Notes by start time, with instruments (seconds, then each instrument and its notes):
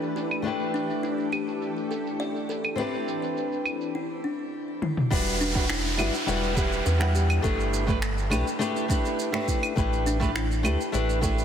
Already playing: string machine E3 A3 D4 G4 B4, nylon-string guitar A3 D4 E4 G4 B4
0.03 shaker
0.16 kalimba E4, shaker
0.31 claves, shaker
0.42 nylon-string guitar A3 D4 E4, string machine G4 A4, shaker
0.46 nylon-string guitar G4 B4
0.61 shaker
0.74 kalimba D4, shaker
0.90 shaker
1.03 kalimba E4, shaker
1.19 shaker
1.32 kalimba G4, claves, shaker
1.48 shaker
1.62 shaker
1.77 shaker
1.91 kalimba A4, shaker
2.07 shaker
2.20 kalimba D5, shaker
2.36 shaker
2.49 kalimba A4, shaker
2.65 claves, shaker
2.76 nylon-string guitar C4 D4 E4, string machine C4 B4, kalimba B4, shaker
2.80 nylon-string guitar G4 B4
2.94 shaker
3.08 shaker
3.23 shaker
3.37 shaker
3.52 shaker
3.65 claves, shaker
3.81 shaker
3.95 kalimba E4
4.24 kalimba D4
4.82 kalimba E4, high tom
4.97 mid tom
5.10 sub bass E1, nylon-string guitar G3 D4 E4 F#4 B4, kick, downlifter, shaker
5.27 shaker
5.41 kalimba D4, shaker
5.54 nylon-string guitar G3 D4 E4 F#4 B4, kick, shaker
5.70 kalimba E4, finger snap, shaker
5.85 shaker
5.97 sub bass G1, nylon-string guitar G3 D4 E4 F#4 B4, kalimba F#4, claves, shaker
6.14 shaker
6.26 sub bass E1, nylon-string guitar G3 D4 E4 F#4 B4, shaker
6.43 shaker
6.55 nylon-string guitar G3 D4 E4 B4 F#5, kalimba G4, kick, shaker
6.72 shaker
6.86 sub bass E2, kalimba B4, shaker
6.99 nylon-string guitar G3 D4 E4 B4 F#5, finger snap, shaker
7.15 kalimba G4, shaker
7.30 claves, shaker
7.42 sub bass G1, nylon-string guitar A3 D4 E4 G4 B4, kalimba A4, kick, shaker
7.60 shaker
7.74 shaker
7.87 nylon-string guitar A3 D4 E4 G4 B4, kick, shaker
8.02 finger snap, shaker
8.18 shaker
8.30 sub bass B1, nylon-string guitar A3 D4 E4 G4 B4, claves, shaker
8.47 shaker
8.59 nylon-string guitar A3 D4 E4 G4 B4, kalimba E4, shaker
8.76 shaker
8.88 nylon-string guitar A3 D4 E4 G4 B4, kalimba D4, kick, shaker
9.05 shaker
9.19 shaker
9.32 nylon-string guitar A3 D4 E4 G4 B4, finger snap, shaker
9.48 kalimba E4, kick, shaker
9.63 claves, shaker
9.76 sub bass A1, nylon-string guitar A3 D4 E4 G4 B4, kick, shaker
9.93 shaker
10.06 kalimba D4, shaker
10.20 nylon-string guitar A3 D4 E4 G4 B4, kick, shaker
10.36 kalimba E4, finger snap, shaker
10.51 shaker
10.63 sub bass D2, nylon-string guitar A3 D4 E4 G4 B4, kalimba G4, claves, shaker
10.81 shaker
10.92 sub bass A1, nylon-string guitar A3 D4 E4 G4 B4, shaker
11.09 shaker
11.21 nylon-string guitar A3 D4 E4 G4 B4, kalimba A4, kick, shaker
11.38 shaker